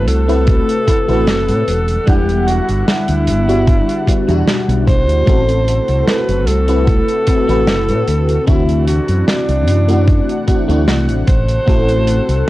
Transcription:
Already playing: C3 A3 C4 E4 F#4 A4 F#5
0.08 C2 A4, closed hi-hat
0.28 A3 C4 E4 F#4 B4, closed hi-hat
0.47 kick, closed hi-hat
0.69 closed hi-hat
0.87 A3 C4 E4 F#4 B4, kick, closed hi-hat
1.08 A1 A3 C4 E4 F#4 B4, closed hi-hat
1.27 F#1, snare, closed hi-hat
1.49 A2, closed hi-hat
1.68 E1 D3 G3 E4, closed hi-hat
1.88 closed hi-hat
2.06 E1 G3 B3 D4 E4 G4 F#5, kick, closed hi-hat
2.29 closed hi-hat
2.48 F#4, closed hi-hat
2.69 G1, closed hi-hat
2.87 E4, snare, closed hi-hat
3.08 D2, closed hi-hat
3.27 G1 D4, closed hi-hat
3.48 G3 B3 D4 E4 F#4, closed hi-hat
3.67 kick, closed hi-hat
3.89 closed hi-hat
4.07 G3 B3 D4 E4 F#4, kick, closed hi-hat
4.27 E2 B2 G3 D4 E4 F#4, closed hi-hat
4.48 snare, closed hi-hat
4.68 B1, closed hi-hat
4.87 C5, kick, closed hi-hat
5.09 D2, closed hi-hat
5.26 A1 C3 A3 C4 E4 F#4 A4, kick, closed hi-hat
5.49 closed hi-hat
5.68 closed hi-hat
5.88 C2, closed hi-hat
6.07 B4, snare, closed hi-hat
6.29 F#1, closed hi-hat
6.47 C2 A4, closed hi-hat
6.68 A3 C4 E4 F#4 B4, closed hi-hat
6.87 kick, closed hi-hat
7.08 closed hi-hat
7.27 A3 C4 E4 F#4 B4, kick, closed hi-hat
7.47 A1 A3 C4 E4 F#4 B4, closed hi-hat
7.67 F#1, snare, closed hi-hat
7.88 A2, closed hi-hat
8.08 D2, closed hi-hat
8.29 closed hi-hat
8.46 D2 E3 A3 C4 D4 E4 F#4 F#5, kick, closed hi-hat
8.69 closed hi-hat
8.88 F#4, closed hi-hat
9.08 F#2, closed hi-hat
9.27 D4, snare, closed hi-hat
9.49 C2, closed hi-hat
9.68 F#2, closed hi-hat
9.88 A3 C4 D4 E4 F#4, closed hi-hat
10.08 kick, closed hi-hat
10.29 closed hi-hat
10.47 A3 C4 D4 E4 F#4, kick, closed hi-hat
10.68 D2 A3 C4 D4 E4 F#4, closed hi-hat
10.88 C2, snare, closed hi-hat
11.09 A1, closed hi-hat
11.27 A1 C3 A3 A4 C5, kick, closed hi-hat
11.48 closed hi-hat
11.66 A1 A3 C4 E4 F#4 A4, kick, closed hi-hat
11.89 closed hi-hat
12.07 closed hi-hat
12.29 C2, closed hi-hat

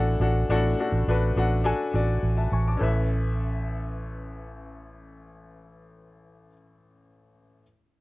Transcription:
Already playing: A1 A2 D4 F#4 A4 F#5 G#5
0.20 A1 D4 F#4 A4 F#5
0.49 A1 A2 D4 F#4 A4 F#5
0.80 D4 F#4 A4 F#5
0.92 A1
1.08 A1 D4 F#4 A4 B4
1.36 A1 D4 F#4 A4 F#5
1.64 D4 F#4 A4 G#5
1.94 A1 D4 F#4 A4 D5
2.23 A1
2.37 E5 A5
2.52 A1 G#5 C#6
2.67 A5 D6
2.77 A1 C#4 A4
2.81 B4 E5

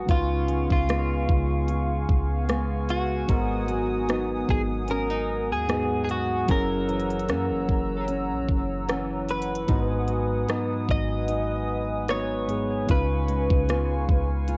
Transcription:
Already playing: F#3 B3
0.06 C#2 C#3 G#3 D#4 F4 F5 G#5 C#6, kick, closed hi-hat
0.11 F4 B4
0.48 G#3, closed hi-hat
0.70 C#2 F4, kick
0.89 G#3 B3 F4, cross-stick, closed hi-hat
1.29 C#2, kick
1.68 F4, closed hi-hat
2.09 C#2, kick
2.49 G#3 B3, cross-stick, closed hi-hat
2.89 F#4, closed hi-hat
3.27 G#1 G#2 G#3 B3 D#4 F#4 F#5 D#6, kick, closed hi-hat
3.31 A#4
3.68 F#3, closed hi-hat
4.09 F#3 B3 D#4, cross-stick, closed hi-hat
4.49 G#1 G#4, kick
4.88 C#4 A#4, closed hi-hat
5.10 D#4
5.50 D#2 G#4
5.67 G#2 F#3 G#3 B3 D#4 F#4 G#4, cross-stick, closed hi-hat
6.04 G#4
6.09 F#4, closed hi-hat
6.46 F#1 F#2 F#3 C#4 E4 G#4 C#5 A#5 E6, kick, closed hi-hat
6.51 A#4 C#5
6.88 E3, closed hi-hat
7.00 closed hi-hat
7.10 closed hi-hat
7.19 closed hi-hat
7.28 F#2 E3 A#3 C#4, cross-stick, closed hi-hat
7.50 F#1
7.69 F#1, kick
8.08 C#4, closed hi-hat
8.31 A#1
8.49 F#1, kick
8.88 E3 C#4, cross-stick, closed hi-hat
9.29 B4, closed hi-hat
9.42 closed hi-hat
9.55 closed hi-hat
9.66 G#1 G#2 G#3 B3 D#4 F#4 B4 G#5 D#6, kick, closed hi-hat
9.71 B4
10.08 F#3, closed hi-hat
10.48 F#3 B3 D#4, cross-stick, closed hi-hat
10.89 G#1 D#5, kick
11.28 D#4, closed hi-hat
12.08 F#3 B3 D#4 C#5, cross-stick, closed hi-hat
12.48 G#2 G#3 B3 F#4 G#4, closed hi-hat
12.86 C#2 C#3 G#3 D#4 F4 F5 C#6, kick, closed hi-hat
12.91 B4
13.28 G#3, closed hi-hat
13.50 C#2, kick
13.68 G#3 B3 F4, cross-stick, closed hi-hat
14.09 C#2, kick
14.48 F4, closed hi-hat

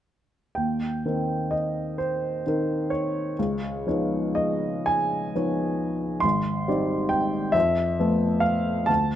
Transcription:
0.55 D#2 G5
1.05 D#3 C4 D#4 A#4
1.51 D#5
1.98 C5
2.46 D#3 C4 D#4 A#4
2.90 C#5
3.39 C#2
3.87 F3 B3 D#4 C#5
4.35 D#5
4.86 G#5
5.35 F3 B3 D#4 C#5
6.20 G#1 C6
6.68 G3 C4 D#4 D5
7.09 G5
7.52 F2 E5
7.99 F3 A3 B3 A4
8.40 F5
8.86 D2 A5

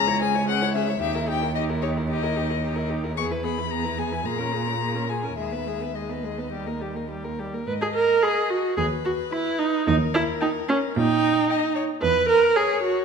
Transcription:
Already playing: C#2 A#5
0.07 E4 C#5
0.21 C#4 G#4 G#5
0.34 E4 C#5
0.47 C#4 G#4 F#5
0.62 E4 C#5
0.75 C#4 G#4 E5
0.87 E4 C#5
1.01 D#2 D#4 G4 E5
1.15 E4 A#4
1.28 D#4 G4 G5
1.42 E4 A#4
1.55 D#4 G4 D#5
1.69 E4 A#4
1.82 D#4 G4 C#5
1.96 E4 A#4
2.09 D#4 G4 D#5
2.23 E4 A#4
2.36 D#4 G4
2.49 E4 A#4
2.63 D#4 G4
2.75 E4 A#4
2.89 D#4 G4
3.03 E4 A#4
3.17 E2 B3 G#4 C#6
3.31 E4 B4
3.44 B3 G#4 B5
3.58 E4 B4
3.71 B3 G#4 A#5
3.84 E4 B4
3.98 B3 G#4 G#5
4.11 E4 B4
4.25 A#2 A#3 G#4 A#5
4.38 C#4 A#4
4.52 A#3 G#4
4.66 C#4 A#4
4.80 A#3 G#4
4.95 C#4 A#4
5.08 A#3 G#4 G#5
5.23 C#4 A#4
5.37 D#2 G#3 G#4 E5
5.52 B3 B4
5.66 G#3 G#4
5.80 B3 B4
5.95 G#3 G#4 D#5
6.09 B3 B4
6.23 G#3 G#4
6.38 B3 B4
6.52 G3 G4
6.66 A#3 A#4
6.80 G3 G4
6.95 A#3 A#4
7.09 G3 G4
7.24 A#3 A#4
7.39 G3 G4
7.52 A#3 A#4
7.67 G#2 B4 D#5
7.81 G#4
7.94 A#4
8.22 G#4 B5
8.50 F#4
8.77 D#2 G#4 B4
9.05 F#4
9.32 E4 B5
9.59 D#4
9.87 D#2 D#4 A#4
10.14 E4
10.41 D#4 G5
10.69 C#4
10.96 A#2 D#4 G5
11.50 D#5 G5
11.75 C#5
12.02 E2 B4
12.29 A#4
12.55 G#4 C#5 G#5
12.83 F#4

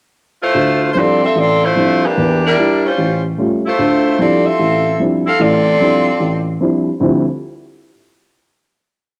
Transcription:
0.42 A3 E4 F4 C5
0.55 D2
0.93 F3 G3 C4 D4 E4 C5
0.98 C4 F4 A4 D5
1.24 C4 F4 A4 E5
1.36 A1 C4 F4 A4 D5
1.64 A3 E4 F4 C5
1.76 F3 G3 C4 D4 E4
2.06 E3 A#3 D4 G4
2.17 E2 E3
2.47 G3 D4 E4 A#4
2.57 G3 D4 E4
2.86 G3 C#4 F4 C5
2.98 A1
3.38 G3 A3 C#4 F4
3.66 A3 E4 F4 C5
3.79 D2 D3
4.19 F3 G3 C4 D4 E4 F4 A4 D5
4.46 C4 F4 A4 E5
4.59 A1
5.00 F3 G3 C4 D4 E4
5.27 C4 E4 A4 F5
5.40 A1 A2 C4 F4 A4 D5
5.80 F3 G3 C4 D4 E4
6.20 A1
6.60 F3 G3 C4 D4 E4
7.00 D2 D3 F3 G3 C4 E4

